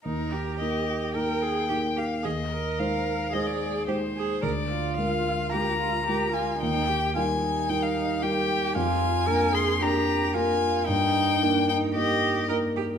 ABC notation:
X:1
M:4/4
L:1/16
Q:1/4=111
K:Eb
V:1 name="Violin"
B4 e4 g6 f2 | e4 f4 e d3 c4 | d4 f4 b6 a2 | g4 a4 g f3 g4 |
a6 c'2 b4 a4 | g6 g2 e4 z4 |]
V:2 name="Cello"
E2 G6 B2 A2 G2 G2 | A2 B6 A4 G2 A2 | B2 F6 G2 F2 G2 F2 | E2 G2 F2 E6 G4 |
F4 B2 A2 G4 F4 | E4 D2 E2 G4 B2 G2 |]
V:3 name="Grand piano"
E,,4 [B,EB]4 [B,EB]4 [B,EB]4 | E,,4 [A,Ec]4 [A,Ec]4 [A,Ec]4 | D,,4 [A,FB]4 [A,FB]4 [A,FB]4 | E,,4 [G,EB]4 [G,EB]4 [G,EB]4 |
F,,4 [B,DB]4 [B,DB]4 [B,DB]4 | G,,4 [B,EB]4 [B,EB]4 [B,EB]4 |]